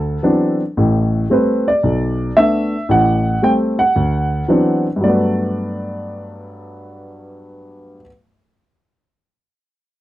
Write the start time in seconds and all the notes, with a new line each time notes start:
Already playing: D2 A4
0.23 E3 F#3 B3 C4 D4
0.77 A1 A2
1.30 G3 A3 C4 B4
1.68 D5
1.83 B1
2.37 A3 B3 D4 E5
2.89 A1 A2 F#5
3.42 G3 A3 C4 G5
3.79 F#5
3.96 D2
4.48 E3 F#3 B3 C4 D4
4.96 G2
5.01 F#3 A3 D5
5.08 B3